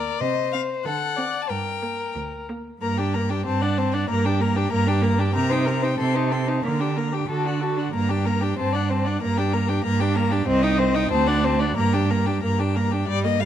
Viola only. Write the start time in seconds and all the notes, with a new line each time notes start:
Already playing: A#3
0.54 C4
1.18 C4
1.83 A#3
2.49 A#3
2.82 A#3
2.99 D4
3.15 A#3
3.31 D4
3.46 C4
3.63 D4
3.78 C4
3.94 D4
4.10 A#3
4.25 D4
4.40 A#3
4.56 D4
4.71 A#3
4.87 D4
5.02 A#3
5.18 D4
5.34 C4
5.51 D#4
5.67 C4
5.83 D#4
5.99 C4
6.15 D#4
6.32 C4
6.48 D#4
6.64 A#3
6.80 D4
6.97 A#3
7.13 D4
7.28 F#4
7.44 D4
7.61 F#4
7.77 D4
7.94 A#3
8.10 D4
8.26 A#3
8.42 D4
8.59 C4
8.75 D4
8.91 C4
9.06 D4
9.22 A#3
9.38 D4
9.54 A#3
9.69 D4
9.85 A#3
10.01 D4
10.16 A#3
10.32 D4
10.47 C4
10.63 D#4
10.79 C4
10.95 D#4
11.12 C4
11.28 D4
11.44 C4
11.60 D4
11.77 A#3
11.94 D4
12.10 A#3
12.27 D4
12.44 A#3
12.60 D4
12.76 A#3
12.93 D4
13.09 G3
13.25 A#3
13.40 G3